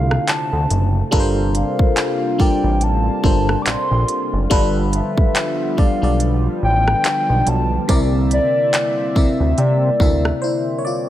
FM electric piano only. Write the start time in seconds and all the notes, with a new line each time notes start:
Already playing: D3 A3 D4 E4 F4 A4 C5
1.11 G3 D4 F4 A4 A#4 B4
1.20 C5
2.38 G3 D4 F4 A4 A#4 D5
3.23 G3 D4 F4 A4 A#4 C5
4.50 G3 D4 F4 A4 B4
5.77 G3 D4 F4 A4 D5
6.02 G3 D4 F4 A4 D5
7.88 C3 C4 E4 A#4 D5
9.15 C3 C4 E4 A#4 D5
10.00 C3 C4 E4 A#4 E5
10.42 E4 C5
10.78 C#5
10.85 F4 D5